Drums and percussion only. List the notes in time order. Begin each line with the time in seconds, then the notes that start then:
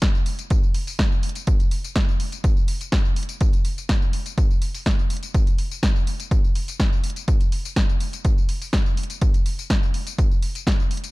0.02 kick, snare, closed hi-hat, tambourine
0.15 tambourine
0.26 open hi-hat
0.39 closed hi-hat, tambourine
0.50 kick, closed hi-hat, tambourine
0.63 tambourine
0.74 open hi-hat
0.87 open hi-hat, tambourine
0.99 kick, snare, tambourine
1.12 tambourine
1.23 open hi-hat
1.29 closed hi-hat
1.35 closed hi-hat, tambourine
1.47 kick, closed hi-hat, tambourine
1.60 closed hi-hat, tambourine
1.71 open hi-hat
1.84 tambourine
1.96 kick, snare, closed hi-hat, tambourine
2.09 tambourine
2.20 open hi-hat
2.32 closed hi-hat, tambourine
2.44 kick, closed hi-hat, tambourine
2.57 tambourine
2.68 open hi-hat
2.81 closed hi-hat, tambourine
2.92 kick, snare, tambourine
3.05 tambourine
3.16 open hi-hat
3.23 closed hi-hat
3.29 closed hi-hat, tambourine
3.41 kick, closed hi-hat, tambourine
3.53 closed hi-hat, tambourine
3.65 open hi-hat
3.78 tambourine
3.89 kick, snare, closed hi-hat, tambourine
4.02 tambourine
4.13 open hi-hat
4.26 closed hi-hat, tambourine
4.38 kick, closed hi-hat, tambourine
4.51 tambourine
4.62 open hi-hat
4.74 open hi-hat, tambourine
4.86 kick, snare, tambourine
4.99 tambourine
5.10 open hi-hat
5.17 closed hi-hat
5.23 closed hi-hat, tambourine
5.34 kick, closed hi-hat, tambourine
5.47 closed hi-hat, tambourine
5.58 open hi-hat
5.71 tambourine
5.83 kick, snare, closed hi-hat, tambourine
5.96 tambourine
6.07 open hi-hat
6.20 closed hi-hat, tambourine
6.31 kick, closed hi-hat, tambourine
6.44 tambourine
6.55 open hi-hat
6.68 closed hi-hat, tambourine
6.80 kick, snare, tambourine
6.93 tambourine
7.04 open hi-hat
7.10 closed hi-hat
7.16 closed hi-hat, tambourine
7.28 kick, closed hi-hat, tambourine
7.41 closed hi-hat, tambourine
7.52 open hi-hat
7.65 tambourine
7.76 kick, snare, closed hi-hat, tambourine
7.89 tambourine
8.00 open hi-hat
8.13 closed hi-hat, tambourine
8.25 kick, closed hi-hat, tambourine
8.38 tambourine
8.49 open hi-hat
8.62 open hi-hat, tambourine
8.73 kick, snare, tambourine
8.86 tambourine
8.97 open hi-hat
9.03 closed hi-hat
9.10 closed hi-hat, tambourine
9.21 kick, closed hi-hat, tambourine
9.34 closed hi-hat, tambourine
9.46 open hi-hat
9.59 tambourine
9.70 kick, snare, closed hi-hat, tambourine
9.83 tambourine
9.94 open hi-hat
10.07 closed hi-hat, tambourine
10.18 kick, closed hi-hat, tambourine
10.31 tambourine
10.42 open hi-hat
10.55 closed hi-hat, tambourine
10.67 kick, snare, tambourine
10.80 tambourine
10.91 open hi-hat
10.97 closed hi-hat
11.04 closed hi-hat, tambourine